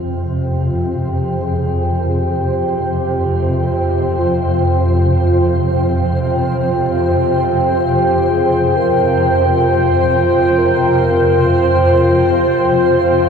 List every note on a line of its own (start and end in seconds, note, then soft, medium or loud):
0.00 13.29 F2 medium
0.00 13.29 C3 medium
0.00 13.29 F4 medium
0.00 13.29 C5 medium
0.00 13.29 G5 medium
0.53 0.99 F4 medium
0.97 1.43 G4 medium
1.42 2.02 G#4 loud
2.00 2.10 A#4 medium
2.09 2.20 G#4 medium
2.18 2.31 G4 medium
2.30 2.37 G#4 medium
2.35 3.70 G4 loud
3.70 4.20 G4 medium
4.19 5.10 F4 medium
5.11 5.98 F4 medium
7.86 8.33 G4 medium
8.31 8.77 G#4 medium
8.76 9.66 A#4 loud
9.69 10.59 C5 loud
10.58 11.50 A#4 loud
11.48 13.29 C5 loud